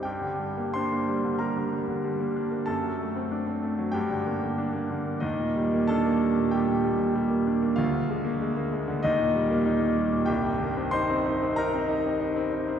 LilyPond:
<<
  \new Staff \with { instrumentName = "Grand piano" } { \time 4/4 \key g \minor \tempo 4 = 94 <g' g''>4 <c'' c'''>4 <bes' bes''>2 | <a' a''>2 <g' g''>2 | <ees' ees''>4 <a' a''>4 <g' g''>2 | <f' f''>2 <ees' ees''>2 |
\key c \minor <g' g''>4 <c'' c'''>4 <bes' bes''>2 | }
  \new Staff \with { instrumentName = "Grand piano" } { \clef bass \time 4/4 \key g \minor g,16 d16 g16 bes16 d'16 bes16 g16 d16 g16 d16 g16 d16 g16 bes16 d'16 bes16 | fis,16 fis16 a16 c'16 d'16 c'16 a16 fis16 g,16 d16 bes16 d16 d'16 bes16 d16 bes16 | ees,16 bes,16 g16 bes16 d'16 bes16 g16 bes,16 g16 bes,16 g16 bes,16 g16 bes16 d'16 bes16 | d,16 d16 aes16 bes16 aes16 bes16 aes16 d16 ees,16 bes,16 g16 bes16 ees'16 bes16 g16 bes,16 |
\key c \minor c,16 g,16 ees16 c'16 ees'16 c'16 ees'16 c'16 ees'16 c'16 ees'16 c'16 ees'16 c'16 ees'16 c'16 | }
>>